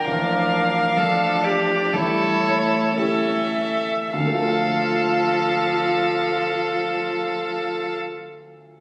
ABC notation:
X:1
M:4/4
L:1/16
Q:1/4=52
K:Dm
V:1 name="Violin"
f6 d2 ^c4 e4 | f16 |]
V:2 name="Violin"
B4 A2 G2 A4 A3 z | A16 |]
V:3 name="Viola"
D4 D4 E4 ^C3 z | F16 |]
V:4 name="Grand piano"
A,,,4 [F,DF]4 A,,,4 [A,EG]4 | [D,,D,A,FAf]16 |]
V:5 name="Cello" clef=bass
F,4 F,4 G,2 A,2 A,3 z | F,16 |]